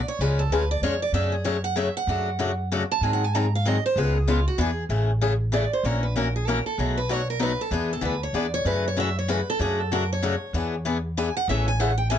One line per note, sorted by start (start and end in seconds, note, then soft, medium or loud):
0.08 0.21 C#5 loud
0.19 0.44 C#2 medium
0.19 0.40 C#3 medium
0.19 0.41 G#3 medium
0.19 0.41 C#4 medium
0.19 0.41 F4 medium
0.19 0.41 G#4 medium
0.19 0.39 B4 medium
0.39 0.51 A4 medium
0.50 0.77 D2 medium
0.50 0.63 C#3 medium
0.50 0.63 G#3 medium
0.50 0.63 C#4 medium
0.50 0.63 F4 loud
0.50 0.63 G#4 medium
0.50 0.70 B4 medium
0.71 0.83 D5 loud
0.82 1.09 F2 medium
0.82 0.94 C#3 medium
0.82 0.94 G#3 loud
0.82 0.94 C#4 loud
0.82 0.94 F4 loud
0.82 0.94 G#4 loud
0.82 1.01 C#5 medium
1.02 1.14 D5 medium
1.12 1.88 F#2 medium
1.12 1.34 C#3 medium
1.12 1.34 F#3 medium
1.12 1.34 A3 medium
1.12 1.34 C#4 medium
1.12 1.34 G#4 medium
1.12 1.32 E5 loud
1.32 1.45 G#4 medium
1.44 1.56 C#3 medium
1.44 1.56 F#3 medium
1.44 1.56 A3 medium
1.44 1.56 C#4 loud
1.44 1.56 G#4 medium
1.44 1.63 C#5 medium
1.64 1.76 F#5 loud
1.76 1.87 C#3 medium
1.76 1.87 F#3 medium
1.76 1.88 A3 medium
1.76 1.88 C#4 loud
1.76 1.88 G#4 loud
1.76 1.95 E5 medium
1.97 2.67 F#5 loud
2.07 2.83 F#2 medium
2.07 2.28 C#3 medium
2.07 2.29 F#3 medium
2.07 2.29 A3 medium
2.07 2.29 D4 medium
2.07 2.29 F#4 medium
2.39 2.50 C#3 medium
2.39 2.50 F#3 medium
2.39 2.50 A3 medium
2.39 2.51 D4 medium
2.39 2.51 F#4 medium
2.72 2.82 C#3 medium
2.72 2.82 F#3 medium
2.72 2.82 A3 loud
2.72 2.83 D4 medium
2.72 2.83 F#4 loud
2.91 3.03 A5 loud
3.01 3.77 G#2 medium
3.01 3.23 D#3 medium
3.01 3.23 F#3 medium
3.01 3.23 C4 medium
3.01 3.23 D#4 medium
3.01 3.23 G#4 medium
3.01 3.13 G#5 medium
3.13 3.24 F#5 medium
3.24 3.36 G#5 loud
3.35 3.45 D#3 medium
3.35 3.45 F#3 loud
3.35 3.45 C4 medium
3.35 3.45 D#4 medium
3.35 3.46 G#4 loud
3.35 3.53 A#5 loud
3.55 3.66 F5 medium
3.65 3.76 D#3 medium
3.65 3.76 F#3 loud
3.65 3.76 C4 loud
3.65 3.77 D#4 medium
3.65 3.77 G#4 loud
3.65 3.85 D#5 medium
3.86 3.98 C5 loud
3.96 4.46 C#2 medium
3.96 4.16 C#3 medium
3.96 4.17 G#3 medium
3.96 4.17 B3 medium
3.96 4.17 F4 medium
3.96 4.17 G#4 medium
3.96 4.17 B4 medium
4.17 4.28 G#4 medium
4.28 4.38 C#3 medium
4.28 4.39 G#3 medium
4.28 4.39 B3 medium
4.28 4.39 F4 medium
4.28 4.47 F4 medium
4.28 4.39 G#4 medium
4.48 4.59 F#4 medium
4.58 4.83 E2 medium
4.58 4.69 E3 medium
4.58 4.69 B3 medium
4.58 4.70 D4 loud
4.58 4.70 G#4 loud
4.58 4.83 G#4 medium
4.89 5.65 A1 medium
4.89 5.10 C#3 medium
4.89 5.10 E3 medium
4.89 5.10 A3 medium
4.89 5.10 C#4 medium
4.89 5.11 G#4 medium
5.21 5.32 C#3 medium
5.21 5.32 E3 medium
5.21 5.33 A3 medium
5.21 5.33 C#4 medium
5.21 5.33 G#4 medium
5.52 5.63 C#3 medium
5.52 5.64 E3 medium
5.52 5.64 A3 loud
5.52 5.64 C#4 medium
5.52 5.64 G#4 medium
5.52 5.72 D5 medium
5.73 5.85 C5 medium
5.83 6.59 A#1 medium
5.83 6.04 E3 medium
5.83 6.05 A#3 medium
5.83 6.05 C#4 medium
5.83 6.05 F#4 medium
5.83 6.05 A#4 medium
5.83 6.03 C#5 loud
6.03 6.15 B4 medium
6.16 6.27 E3 medium
6.16 6.27 A#3 medium
6.16 6.27 C#4 medium
6.16 6.27 F#4 medium
6.16 6.34 A#4 medium
6.16 6.27 A#4 loud
6.36 6.47 G#4 medium
6.47 6.58 E3 medium
6.47 6.58 A#3 medium
6.47 6.59 C#4 medium
6.47 6.59 F#4 medium
6.47 6.66 A#4 medium
6.47 6.59 A#4 loud
6.66 6.79 A4 medium
6.78 7.53 B1 medium
6.78 6.99 B2 medium
6.78 6.99 F#3 medium
6.78 6.99 A3 medium
6.78 6.99 D#4 medium
6.78 6.99 F#4 medium
6.78 6.97 G#4 medium
6.98 7.11 B4 medium
7.09 7.20 B2 medium
7.09 7.20 F#3 medium
7.09 7.21 A3 medium
7.09 7.21 D#4 medium
7.09 7.21 F#4 medium
7.09 7.29 C#5 medium
7.30 7.41 A#4 medium
7.39 7.51 B2 medium
7.39 7.51 F#3 medium
7.39 7.51 A3 medium
7.39 7.51 D#4 loud
7.39 7.52 F#4 loud
7.39 7.60 B4 medium
7.61 7.72 A4 medium
7.71 7.97 E2 medium
7.71 7.92 E3 medium
7.71 7.92 B3 medium
7.71 7.92 D4 medium
7.71 7.92 G#4 medium
7.71 7.91 G#4 medium
7.93 8.04 A4 medium
8.01 8.29 D2 medium
8.01 8.13 E3 medium
8.01 8.13 B3 medium
8.01 8.14 D4 medium
8.01 8.14 G#4 medium
8.05 8.23 B4 medium
8.23 8.36 C#5 medium
8.33 8.60 E2 medium
8.33 8.45 E3 medium
8.33 8.46 B3 medium
8.33 8.46 D4 medium
8.33 8.46 G#4 medium
8.33 8.53 D5 medium
8.54 8.66 C#5 loud
8.65 9.41 F#2 medium
8.65 8.86 C#3 medium
8.65 8.86 E3 medium
8.65 8.86 A3 medium
8.65 8.86 C#4 medium
8.65 8.86 F#4 medium
8.65 8.85 B4 medium
8.88 8.98 C#5 medium
8.96 9.08 C#3 medium
8.96 9.08 E3 medium
8.96 9.08 A3 medium
8.96 9.09 C#4 medium
8.96 9.09 F#4 medium
8.96 9.17 E5 loud
9.19 9.30 C#5 medium
9.28 9.40 C#3 medium
9.28 9.40 E3 medium
9.28 9.40 A3 loud
9.28 9.40 C#4 medium
9.28 9.40 F#4 loud
9.28 9.48 B4 medium
9.50 9.61 A4 loud
9.59 10.35 F#2 medium
9.59 9.80 C#3 medium
9.59 9.80 F#3 medium
9.59 9.80 A3 medium
9.59 9.81 D4 medium
9.59 9.81 F#4 medium
9.59 9.81 G#4 medium
9.81 9.92 A4 medium
9.92 10.03 C#3 medium
9.92 10.03 F#3 medium
9.92 10.03 A3 medium
9.92 10.03 D4 loud
9.92 10.03 F#4 loud
9.92 10.11 A#4 medium
10.13 10.83 C#5 medium
10.23 10.34 C#3 loud
10.23 10.34 F#3 loud
10.23 10.34 A3 loud
10.23 10.34 D4 medium
10.23 10.34 F#4 loud
10.53 11.29 E2 medium
10.53 10.74 E3 medium
10.53 10.75 B3 medium
10.53 10.75 D4 medium
10.53 10.75 G#4 medium
10.85 10.96 E3 medium
10.85 10.97 B3 medium
10.85 10.97 D4 medium
10.85 10.97 G#4 medium
11.17 11.28 E3 medium
11.17 11.28 B3 loud
11.17 11.28 D4 loud
11.17 11.28 G#4 loud
11.17 11.36 G#5 medium
11.37 11.48 F#5 loud
11.48 12.19 A1 medium
11.48 11.69 C#3 medium
11.48 11.69 E3 medium
11.48 11.69 A3 medium
11.48 11.69 C#4 medium
11.48 11.69 G#4 medium
11.48 11.67 E5 medium
11.68 11.80 G#5 loud
11.80 11.91 C#3 medium
11.80 11.91 E3 medium
11.80 11.91 A3 medium
11.80 11.91 C#4 loud
11.80 11.91 G#4 loud
11.80 11.97 F#5 medium
11.98 12.10 G5 medium
12.10 12.19 C#3 loud
12.10 12.19 E3 medium
12.10 12.19 A3 loud
12.10 12.19 C#4 loud
12.10 12.19 G#4 loud
12.10 12.19 G#5 loud